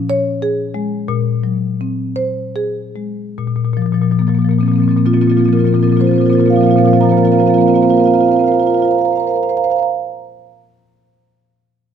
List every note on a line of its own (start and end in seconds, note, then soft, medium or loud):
0.00 1.04 A#2 loud
0.00 0.30 C#4 medium
0.10 0.61 C#5 loud
0.42 0.95 G#4 loud
0.74 1.08 G#3 medium
1.08 3.34 A#2 loud
1.44 2.02 F#3 medium
1.81 2.40 C4 medium
2.16 2.79 C5 loud
2.56 3.22 G#4 medium
2.96 3.38 G#3 medium
3.38 3.47 A#2 medium
3.47 3.56 A#2 medium
3.56 3.65 A#2 medium
3.65 3.74 A#2 medium
3.74 3.82 A#2 medium
3.74 3.86 F3 medium
3.82 3.92 A#2 medium
3.86 3.94 F3 medium
3.92 4.02 A#2 medium
3.92 4.03 F3 medium
4.02 4.12 A#2 medium
4.02 4.11 F3 medium
4.11 4.21 A#2 medium
4.11 4.19 F3 medium
4.19 4.29 A#2 medium
4.19 4.28 F3 medium
4.19 4.27 A#3 medium
4.27 4.39 A#2 medium
4.27 4.37 F3 medium
4.27 4.35 A#3 medium
4.35 4.45 F3 medium
4.35 4.42 A#3 medium
4.39 4.49 A#2 medium
4.39 4.51 A#3 medium
4.45 4.59 A#2 medium
4.45 4.53 F3 medium
4.51 4.63 F3 medium
4.51 4.60 A#3 medium
4.59 4.68 A#2 medium
4.59 4.66 A#3 medium
4.59 4.69 C4 medium
4.63 4.72 F3 medium
4.63 4.74 A#3 medium
4.68 4.78 A#2 medium
4.68 4.80 F3 medium
4.68 4.76 C4 medium
4.74 4.82 A#3 medium
4.74 4.83 C4 medium
4.78 4.88 A#2 medium
4.78 4.89 F3 medium
4.78 4.90 A#3 medium
4.83 4.91 C4 medium
4.88 4.97 A#2 medium
4.88 4.97 F3 medium
4.88 4.98 A#3 medium
4.88 4.98 C4 medium
4.97 5.07 A#2 medium
4.97 5.05 F3 medium
4.97 5.06 A#3 medium
4.97 5.06 C4 medium
5.05 5.17 A#2 medium
5.05 5.14 F3 medium
5.05 5.14 A#3 medium
5.05 5.13 C4 medium
5.05 5.14 F4 medium
5.13 5.27 A#2 medium
5.13 5.23 F3 medium
5.13 5.22 A#3 medium
5.13 5.21 C4 medium
5.13 5.21 F4 medium
5.21 5.32 F3 medium
5.21 5.31 A#3 medium
5.21 5.30 C4 medium
5.21 5.30 F4 medium
5.27 5.37 A#2 medium
5.27 5.39 A#3 medium
5.27 5.38 C4 medium
5.27 5.37 F4 medium
5.32 5.41 F3 medium
5.37 5.45 A#2 medium
5.37 5.49 F3 medium
5.37 5.48 A#3 medium
5.37 5.46 C4 medium
5.37 5.44 F4 medium
5.44 5.55 A#2 medium
5.44 5.57 A#3 medium
5.44 5.53 C4 medium
5.44 5.53 F4 medium
5.49 5.57 F3 medium
5.49 5.59 F4 medium
5.53 5.65 A#2 medium
5.53 5.65 A#3 medium
5.53 5.60 C4 medium
5.53 5.61 A#4 medium
5.57 5.66 F3 medium
5.57 5.69 C4 medium
5.57 5.67 F4 medium
5.57 5.67 A#4 soft
5.65 5.74 A#2 medium
5.65 5.74 F3 medium
5.65 5.72 A#3 medium
5.65 5.76 C4 medium
5.65 5.75 F4 medium
5.65 5.74 A#4 medium
5.72 5.84 A#2 medium
5.72 5.83 F3 medium
5.72 5.80 A#3 medium
5.72 5.84 C4 medium
5.72 5.82 F4 medium
5.72 5.81 A#4 medium
5.80 5.93 A#2 medium
5.80 5.91 F3 medium
5.80 5.88 A#3 medium
5.80 5.90 F4 medium
5.80 5.87 A#4 medium
5.84 5.96 A#3 medium
5.84 5.92 C4 medium
5.84 5.94 A#4 soft
5.90 6.01 A#2 medium
5.90 6.00 F3 medium
5.90 5.99 C4 medium
5.90 5.97 F4 medium
5.94 6.05 A#3 medium
5.94 6.04 F4 medium
5.94 6.00 A#4 medium
5.99 6.11 A#2 medium
5.99 6.09 F3 medium
5.99 6.07 C4 medium
5.99 6.07 A#4 medium
5.99 6.08 C5 medium
6.04 6.13 A#3 medium
6.04 6.14 C4 medium
6.04 6.11 F4 medium
6.04 6.14 A#4 medium
6.04 6.16 C5 medium
6.09 6.21 A#2 medium
6.09 6.18 F3 medium
6.09 6.21 A#3 medium
6.09 6.18 F4 medium
6.14 6.26 F3 medium
6.14 6.22 C4 medium
6.14 6.21 A#4 medium
6.14 6.24 C5 medium
6.18 6.30 A#2 medium
6.18 6.30 A#3 medium
6.18 6.30 C4 medium
6.18 6.26 F4 medium
6.18 6.28 A#4 medium
6.24 6.35 F3 medium
6.24 6.33 F4 medium
6.24 6.33 A#4 soft
6.24 6.31 C5 medium
6.30 6.40 A#2 medium
6.30 6.38 A#3 medium
6.30 6.37 C4 medium
6.30 6.41 F4 medium
6.30 6.40 A#4 medium
6.30 6.39 C5 medium
6.35 6.44 F3 medium
6.35 6.46 A#3 medium
6.35 6.45 C4 medium
6.35 6.46 C5 medium
6.40 6.47 A#2 medium
6.40 6.48 F4 medium
6.40 6.46 A#4 medium
6.44 6.57 A#2 medium
6.44 6.53 F3 medium
6.44 6.54 A#3 medium
6.44 6.52 C4 medium
6.44 6.56 F4 medium
6.44 6.52 A#4 medium
6.44 6.53 C5 medium
6.50 6.61 F3 medium
6.50 6.62 A#3 medium
6.50 6.61 C4 medium
6.50 6.59 A#4 medium
6.50 6.60 C5 medium
6.50 6.57 F5 medium
6.56 6.67 A#2 medium
6.56 6.63 F4 medium
6.56 6.65 A#4 medium
6.56 6.65 F5 soft
6.60 6.70 F3 medium
6.60 6.70 A#3 medium
6.60 6.68 C4 medium
6.60 6.71 F4 medium
6.60 6.67 C5 medium
6.65 6.76 A#2 medium
6.65 6.77 C4 medium
6.65 6.72 A#4 soft
6.65 6.73 C5 medium
6.65 6.72 F5 medium
6.70 6.78 F3 medium
6.70 6.78 A#3 medium
6.70 6.79 F4 medium
6.70 6.79 A#4 medium
6.70 6.81 C5 medium
6.70 6.78 F5 soft
6.76 6.85 A#2 medium
6.76 6.88 F3 medium
6.76 6.87 A#3 medium
6.76 6.85 C4 medium
6.76 6.86 F4 medium
6.76 6.86 A#4 soft
6.76 6.84 F5 medium
6.81 6.93 A#2 medium
6.81 6.88 C5 medium
6.81 6.91 F5 medium
6.85 6.97 F3 medium
6.85 6.96 A#3 medium
6.85 6.93 C4 medium
6.85 6.93 F4 medium
6.85 6.94 A#4 medium
6.85 6.96 C5 medium
6.91 7.03 A#2 medium
6.91 7.01 C4 medium
6.91 7.01 F4 medium
6.91 7.01 A#4 medium
6.91 6.97 F5 medium
6.96 7.05 F3 medium
6.96 7.03 A#3 medium
6.96 7.03 C5 medium
6.96 7.04 F5 medium
7.01 7.12 A#2 medium
7.01 7.11 A#3 medium
7.01 7.09 C4 medium
7.01 7.09 F4 medium
7.01 7.08 A#4 medium
7.01 7.10 C5 medium
7.01 7.10 F5 medium
7.01 7.06 A#5 medium
7.05 7.14 F3 medium
7.05 7.17 C4 medium
7.05 7.17 F4 medium
7.05 7.14 A#4 soft
7.05 7.12 A#5 medium
7.10 7.23 A#2 medium
7.10 7.23 F3 medium
7.10 7.19 A#3 medium
7.10 7.21 A#4 medium
7.10 7.18 C5 medium
7.10 7.18 F5 medium
7.10 7.18 A#5 medium
7.17 7.27 A#3 medium
7.17 7.24 C4 medium
7.17 7.25 F4 medium
7.17 7.27 A#4 soft
7.17 7.25 C5 medium
7.17 7.25 F5 medium
7.17 7.25 A#5 medium
7.23 7.32 F3 medium
7.23 7.35 A#3 medium
7.23 7.32 C4 medium
7.23 7.33 F4 medium
7.23 7.34 A#4 medium
7.23 7.32 C5 medium
7.23 7.32 F5 medium
7.23 7.31 A#5 medium
7.31 7.40 F3 medium
7.31 7.42 A#3 medium
7.31 7.39 C4 medium
7.31 7.40 F4 medium
7.31 7.40 A#4 soft
7.31 7.39 C5 medium
7.31 7.39 F5 medium
7.31 7.37 A#5 soft
7.37 7.49 F3 medium
7.37 7.46 C4 medium
7.37 7.47 F4 medium
7.37 7.47 A#4 medium
7.37 7.46 C5 medium
7.37 7.48 F5 medium
7.37 7.43 A#5 medium
7.42 7.50 A#3 medium
7.42 7.50 A#5 medium
7.46 7.57 F3 medium
7.46 7.54 C4 medium
7.46 7.54 F4 medium
7.46 7.54 A#4 soft
7.46 7.54 C5 medium
7.46 7.55 F5 medium
7.46 7.57 A#5 medium
7.50 7.58 A#3 medium
7.50 7.61 C4 medium
7.50 7.61 C5 medium
7.54 7.62 F3 medium
7.54 7.61 F4 medium
7.54 7.61 A#4 medium
7.54 7.61 F5 medium
7.54 7.63 A#5 medium
7.58 7.67 A#3 medium
7.58 7.69 C4 medium
7.58 7.68 F4 medium
7.58 7.67 A#4 medium
7.58 7.68 C5 medium
7.58 7.68 F5 medium
7.63 7.74 A#3 medium
7.63 7.69 A#5 medium
7.67 7.78 C4 medium
7.67 7.75 F4 medium
7.67 7.74 A#4 medium
7.67 7.76 C5 medium
7.67 7.75 F5 medium
7.67 7.76 A#5 soft
7.74 7.82 A#3 medium
7.74 7.85 C4 medium
7.74 7.83 F4 medium
7.74 7.81 A#4 soft
7.74 7.83 C5 medium
7.74 7.82 F5 medium
7.74 7.82 A#5 medium
7.81 7.90 A#3 medium
7.81 7.92 C4 medium
7.81 7.90 F4 medium
7.81 7.87 A#4 medium
7.81 7.90 C5 medium
7.81 7.89 F5 soft
7.81 7.89 A#5 medium
7.87 7.99 A#3 medium
7.87 7.98 F4 medium
7.87 7.94 A#4 medium
7.87 7.97 C5 medium
7.87 7.97 F5 medium
7.87 7.95 A#5 medium
7.92 8.00 C4 medium
7.92 8.00 A#4 medium
7.92 8.01 A#5 soft
7.97 8.04 A#3 medium
7.97 8.07 C4 medium
7.97 8.05 F4 medium
7.97 8.07 A#4 medium
7.97 8.04 C5 medium
7.97 8.04 F5 medium
8.01 8.11 C5 medium
8.01 8.11 F5 medium
8.01 8.07 A#5 medium
8.05 8.15 C4 medium
8.05 8.14 F4 medium
8.05 8.14 A#4 medium
8.05 8.14 A#5 medium
8.11 8.21 F4 medium
8.11 8.21 A#4 soft
8.11 8.19 C5 medium
8.11 8.18 F5 soft
8.11 8.21 A#5 medium
8.15 8.23 C4 medium
8.15 8.26 C5 medium
8.15 8.25 F5 medium
8.21 8.31 C4 medium
8.21 8.29 F4 medium
8.21 8.27 A#4 medium
8.21 8.32 F5 medium
8.21 8.28 A#5 soft
8.26 8.36 F4 medium
8.26 8.34 A#4 soft
8.26 8.33 C5 medium
8.26 8.34 A#5 medium
8.31 8.39 C4 medium
8.31 8.41 A#4 medium
8.31 8.40 C5 medium
8.31 8.39 F5 medium
8.31 8.41 A#5 soft
8.36 8.46 C4 medium
8.36 8.44 F4 medium
8.36 8.48 C5 medium
8.36 8.46 F5 medium
8.41 8.52 F4 medium
8.41 8.48 A#4 soft
8.41 8.48 A#5 medium
8.46 8.56 A#4 medium
8.46 8.55 C5 medium
8.46 8.54 F5 medium
8.46 8.54 A#5 soft
8.52 8.60 F4 medium
8.52 8.62 A#4 soft
8.52 8.63 C5 medium
8.52 8.61 F5 soft
8.52 8.59 A#5 medium
8.59 8.67 F4 medium
8.59 8.70 A#4 medium
8.59 8.70 C5 medium
8.59 8.67 F5 medium
8.59 8.66 A#5 medium
8.66 8.75 F4 medium
8.66 8.78 A#4 medium
8.66 8.77 C5 medium
8.66 8.74 F5 soft
8.66 8.72 A#5 medium
8.72 8.82 F4 medium
8.72 8.81 F5 medium
8.72 8.80 A#5 soft
8.77 8.85 A#4 medium
8.77 8.85 C5 medium
8.77 8.85 A#5 medium
8.81 8.91 F4 medium
8.81 8.91 A#4 medium
8.81 8.91 C5 medium
8.81 8.88 F5 medium
8.85 8.95 F5 medium
8.85 8.92 A#5 medium
8.91 8.99 A#4 medium
8.91 8.99 C5 medium
8.91 8.98 A#5 medium
8.95 9.05 A#4 medium
8.95 9.05 C5 medium
8.95 9.01 F5 medium
8.95 9.05 A#5 soft
9.01 9.08 F5 medium
9.01 9.11 A#5 medium
9.05 9.12 A#4 medium
9.05 9.13 C5 medium
9.05 9.16 F5 medium
9.11 9.20 A#4 soft
9.11 9.20 C5 medium
9.11 9.17 A#5 soft
9.16 9.23 F5 medium
9.16 9.24 A#5 medium
9.20 9.27 A#4 medium
9.20 9.27 C5 medium
9.20 9.29 F5 medium
9.24 9.34 A#4 medium
9.24 9.36 C5 medium
9.24 9.31 A#5 soft
9.29 9.36 F5 medium
9.29 9.37 A#5 medium
9.34 9.38 A#4 medium
9.34 9.43 C5 medium
9.34 9.43 F5 soft
9.34 9.43 A#5 soft
9.43 9.49 C5 medium
9.43 9.50 F5 medium
9.43 9.50 A#5 medium
9.49 9.57 C5 medium
9.49 9.57 F5 medium
9.49 9.57 A#5 soft
9.57 9.64 C5 medium
9.57 9.64 F5 medium
9.57 9.64 A#5 medium
9.64 9.71 C5 medium
9.64 9.72 F5 medium
9.64 9.70 A#5 soft
9.70 9.79 C5 medium
9.70 9.80 F5 medium
9.70 9.76 A#5 medium
9.76 9.85 C5 medium
9.76 9.86 F5 medium
9.76 9.83 A#5 medium
9.83 9.86 A#5 medium